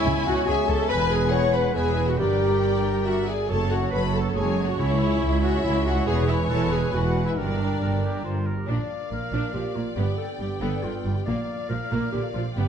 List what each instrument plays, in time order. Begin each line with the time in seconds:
Already playing: trombone section C#3 G#3, clarinet E4, french horn section E4, viola section E4, trumpet C#5, oboe C#5, violin section E5 G#5, flute section G#5
0.04 cello section C#2, double bass section C#2
0.25 cello section C#2, double bass section C#2, clarinet F#4, french horn section F#4, viola section F#4, violin section F#5
0.46 cello section C#2, double bass section C#2, trombone section C#3 G#3, french horn section G#4, clarinet G#4, viola section G#4, trumpet C#5, violin section E5 G#5
0.68 cello section C#2, double bass section C#2, french horn section A4, clarinet A4, viola section A4, violin section A5
0.88 double bass section E1, cello section E2, trombone section E3 G#3, french horn section B4, trumpet B4, viola section B4, oboe B4, clarinet B4, violin section G#5 B5
1.10 french horn section G#4, viola section G#4, clarinet G#4, violin section G#5
1.30 french horn section C#5, viola section C#5, clarinet C#5, violin section F#5 C#6
1.52 viola section B4, clarinet B4, french horn section B4, violin section B5
1.75 double bass section E1, cello section E2, trombone section E3 G#3, french horn section G#4, viola section G#4, clarinet G#4, trumpet B4, violin section E5 G#5
2.08 clarinet F#4, viola section F#4, french horn section F#4, violin section F#5
2.17 double bass section G1, cello section G2, trombone section D3 G3, french horn section G4, viola section G4, clarinet G4, trumpet A#4, oboe D5, violin section D5 G5, flute section A#5
2.62 violin section D5
2.84 violin section A#4
3.06 trombone section D3 G3, clarinet F#4, french horn section F#4, viola section F#4, trumpet A#4, violin section E5 F#5
3.27 clarinet G#4, viola section G#4, french horn section G#4, violin section D5 G#5
3.49 double bass section F#1, cello section F#2, trombone section C#3 F#3, clarinet A4, viola section A4, french horn section A4, trumpet C#5, oboe C#5, violin section C#5 A5, flute section A5
3.70 clarinet F#4, french horn section F#4, viola section F#4, violin section F#5
3.91 double bass section F#1, cello section F#2, violin section A4 B5, clarinet B4, french horn section B4, viola section B4
4.13 clarinet A4, viola section A4, french horn section A4, violin section A5
4.35 double bass section F#1, cello section F#2, viola section G#3, clarinet G#4, french horn section G#4, violin section C#5 G#5
4.66 viola section F#4, clarinet F#4, french horn section F#4, violin section F#5
4.78 cello section C#2, double bass section C#2, trombone section G#3, viola section E4, french horn section E4, clarinet E4, violin section E5, flute section G#5
5.21 double bass section C#2, cello section C#2, violin section E5
5.42 viola section F#4, clarinet F#4, french horn section F#4, violin section F#5
5.64 double bass section C#2, cello section C#2, clarinet E4, viola section E4, french horn section E4, violin section E5
5.85 viola section F#4, clarinet F#4, french horn section F#4, violin section F#5
6.06 double bass section E1, cello section E2, trombone section E3, viola section G#4, clarinet G#4, french horn section G#4, trumpet B4, oboe B4, violin section C#5 G#5
6.28 viola section E4, french horn section E4, clarinet E4, violin section E5
6.50 double bass section E1, cello section E2, viola section A4, clarinet A4, french horn section A4, violin section A5
6.71 viola section G#4, french horn section G#4, clarinet G#4, violin section G#5
6.93 double bass section E1, cello section E2, viola section F#4, french horn section F#4, clarinet F#4, violin section B4 F#5
7.25 viola section E4, french horn section E4, clarinet E4, violin section E5
7.37 double bass section G1, cello section G2, trombone section D3 G3, viola section D4, french horn section D4, clarinet D4, trumpet A#4, oboe A#4, violin section A#4 D5, flute section G5
7.80 double bass section G1, cello section G2, oboe A#4
8.04 oboe G4
8.24 double bass section G1, cello section G2, clarinet F4, oboe C5
8.46 oboe A#4
8.57 clarinet G4
8.67 double bass section A#1, cello section A#2, trombone section F3 A#3, viola section D4, clarinet D5, violin section D5 F5
9.11 double bass section A#1, cello section A#2, viola section A#3, clarinet A#4
9.32 double bass section A#1, cello section A#2, viola section D4
9.53 double bass section A#1, cello section A#2, viola section F3, clarinet G4
9.75 double bass section A#1, cello section A#2, viola section A#3, clarinet F4
9.96 double bass section G1, cello section G2, trombone section D3 B3, viola section B3, clarinet G4, violin section G5
10.18 clarinet A4
10.39 double bass section G1, cello section G2, viola section G3, clarinet G4
10.61 double bass section G1, cello section G2, viola section B3, clarinet A4
10.82 double bass section G1, cello section G2, viola section D3, clarinet F4
11.05 double bass section G1, cello section G2, viola section G3
11.16 clarinet G4
11.26 double bass section A#1, cello section A#2, trombone section F3 A#3, viola section A#3, clarinet D5, violin section D5 F5
11.69 double bass section A#1, cello section A#2, viola section F3, clarinet A#4
11.91 double bass section A#1, cello section A#2, viola section A#3
12.12 double bass section A#1, cello section A#2, viola section D3, clarinet G4
12.34 double bass section A#1, cello section A#2, viola section F3, clarinet F4
12.54 double bass section G1, cello section G2, trombone section D3 B3, viola section B3, clarinet G4, violin section G5